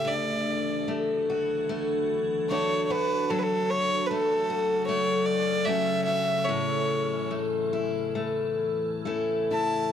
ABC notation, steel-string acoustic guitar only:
X:1
M:4/4
L:1/8
Q:1/4=74
K:Amix
V:1 name="Steel-string acoustic guitar"
D,,2 A, F A,2 [A,DF] F | F,2 A, F A,2 [A,CF] F | A,,2 A, E A,2 [A,CE] E |]